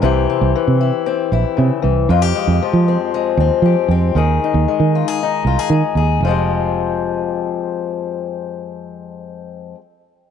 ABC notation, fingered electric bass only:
X:1
M:4/4
L:1/16
Q:1/4=116
K:Fm
V:1 name="Fingered electric bass" clef=bass
C,,2 z C,, z C,2 z3 B,,, z C, z C,,2 | F,,2 z F,, z F,2 z3 E,, z F, z F,,2 | E,,2 z E,, z E,2 z3 C,, z E, z E,,2 | F,,,16- |
F,,,16 |]